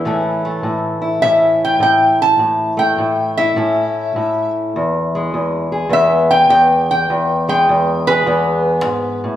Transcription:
0.00 0.78 E4 medium
0.05 0.63 A2 medium
0.05 3.55 E3 medium
0.05 0.45 A3 medium
0.05 1.21 C#4 medium
0.45 2.38 A3 medium
0.63 1.22 A2 medium
1.02 3.38 E4 medium
1.22 1.79 A2 medium
1.22 2.37 C#4 medium
1.22 1.60 E5 loud
1.65 1.81 G5 medium
1.80 2.38 A2 medium
1.80 2.19 G5 medium
2.22 2.78 A5 medium
2.39 2.97 A2 medium
2.77 4.71 A3 medium
2.77 3.35 G5 medium
2.98 3.55 A2 medium
3.37 5.72 E4 medium
3.37 4.51 E5 loud
3.56 4.15 A2 medium
3.56 4.72 C#4 medium
4.16 4.74 A2 medium
4.76 5.33 E2 medium
5.15 7.07 G#3 medium
5.34 5.89 E2 medium
5.72 7.07 G#4 medium
5.89 6.48 E2 medium
5.89 8.26 B3 medium
5.89 6.30 E5 loud
6.31 6.49 G5 medium
6.49 7.08 E2 medium
6.49 6.88 G5 medium
6.91 7.47 G5 medium
7.10 7.68 E2 medium
7.49 9.36 G#3 medium
7.49 8.05 G5 medium
7.69 8.25 E2 medium
8.07 9.36 G#4 medium
8.07 9.20 B4 loud
8.26 8.84 E2 medium
8.26 9.36 B3 medium
8.85 9.24 G#2 medium
9.24 9.36 A2 medium

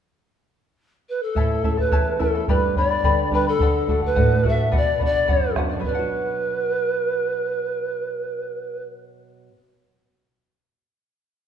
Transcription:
1.09 1.24 B4 medium
1.23 1.81 A4 medium
1.35 1.90 A2 medium
1.35 1.64 E4 medium
1.35 1.64 A4 medium
1.35 1.65 C#5 medium
1.35 1.63 E5 medium
1.35 1.64 A5 medium
1.35 bombo low medium
1.64 2.09 A3 soft
1.64 2.10 C#4 soft
1.64 1.78 E4 soft
1.64 2.10 E4 soft
1.64 1.77 A4 soft
1.64 1.77 E5 soft
1.64 1.76 A5 soft
1.64 bombo low medium
1.77 1.91 E4 soft
1.77 1.91 A4 soft
1.77 2.21 B4 medium
1.77 1.92 A5 soft
1.77 bombo low soft
1.92 2.47 E2 medium
1.92 2.19 E4 medium
1.92 2.19 A4 medium
1.92 2.20 C#5 medium
1.92 2.18 E5 medium
1.92 2.20 A5 medium
1.92 bombo low medium
2.19 2.42 A3 soft
2.19 2.42 C#4 soft
2.19 2.42 E4 medium
2.19 2.34 E4 medium
2.19 2.34 A4 medium
2.19 2.47 A4 medium
2.19 2.34 E5 medium
2.19 2.33 A5 medium
2.19 bombo low medium
2.35 2.49 E4 soft
2.35 2.49 A4 soft
2.35 2.49 A5 soft
2.48 3.03 G2 medium
2.48 2.77 G4 medium
2.48 2.75 B4 medium
2.48 2.76 B4 medium
2.48 2.77 D5 medium
2.48 2.76 G5 medium
2.48 2.77 B5 medium
2.48 bombo low medium
2.76 3.21 G3 soft
2.76 3.22 B3 soft
2.76 3.22 D4 soft
2.76 2.90 B4 soft
2.76 3.29 D5 medium
2.76 2.90 D5 medium
2.76 2.91 G5 medium
2.76 2.89 B5 medium
2.76 bombo low medium
2.90 3.03 B4 soft
2.90 3.04 D5 soft
2.90 3.04 B5 medium
3.04 3.58 D3 medium
3.04 3.32 G4 medium
3.04 3.32 B4 medium
3.04 3.33 D5 medium
3.04 3.32 G5 medium
3.04 3.33 B5 medium
3.04 bombo low medium
3.31 3.54 G3 soft
3.31 3.55 B3 soft
3.31 3.55 D4 soft
3.31 3.47 B4 medium
3.31 3.47 D5 medium
3.31 3.47 G5 soft
3.31 bombo low medium
3.35 3.46 B5 medium
3.47 4.00 A4 medium
3.47 3.61 B4 soft
3.47 3.60 D5 soft
3.47 3.61 B5 soft
3.59 4.14 D3 medium
3.59 3.88 A4 medium
3.59 3.89 D5 medium
3.59 3.90 F#5 medium
3.59 bombo low medium
3.87 4.33 A3 soft
3.87 4.33 D4 soft
3.87 4.34 F#4 soft
3.87 4.03 A4 soft
3.87 4.03 D5 medium
3.87 4.01 F#5 soft
3.87 bombo low medium
4.02 4.50 B4 medium
4.02 4.15 D5 soft
4.02 4.15 F#5 soft
4.02 bombo low soft
4.16 4.71 A2 medium
4.16 4.41 A4 medium
4.16 4.42 D5 medium
4.16 4.43 F#5 medium
4.16 bombo low medium
4.43 4.67 A3 soft
4.43 4.68 D4 soft
4.43 4.68 F#4 soft
4.43 4.58 A4 soft
4.43 4.57 D5 medium
4.43 4.55 F#5 medium
4.43 bombo low medium
4.48 4.75 E5 medium
4.56 4.70 D5 soft
4.56 4.72 F#5 soft
4.72 5.28 B2 medium
4.72 4.98 B4 medium
4.72 4.99 D5 medium
4.72 5.00 F#5 medium
4.72 bombo low medium
4.77 5.01 D5 medium
4.99 5.46 B3 soft
4.99 5.46 D4 soft
4.99 5.46 F#4 soft
4.99 5.14 B4 soft
4.99 5.13 D5 soft
4.99 5.12 F#5 medium
4.99 bombo low medium
5.05 5.55 D5 medium
5.13 5.28 F#5 soft
5.13 bombo low soft
5.28 5.84 F#2 medium
5.28 5.55 B4 medium
5.28 5.56 D5 medium
5.28 5.56 F#5 medium
5.28 bombo low medium
5.56 5.79 B3 soft
5.56 5.80 D4 soft
5.56 5.80 F#4 soft
5.56 5.71 B4 soft
5.56 5.70 D5 medium
5.56 5.68 F#5 medium
5.56 bombo rim soft
5.56 bombo low medium
5.69 9.48 B2 soft
5.69 5.85 D5 soft
5.69 5.84 F#5 medium
5.80 9.51 F#3 soft
5.80 9.56 B4 medium
5.80 bombo low medium
5.85 9.55 B3 soft
5.85 8.84 B4 medium
5.85 9.60 D5 medium
5.92 9.57 D4 soft
5.92 9.63 F#5 medium
5.99 9.61 F#4 medium

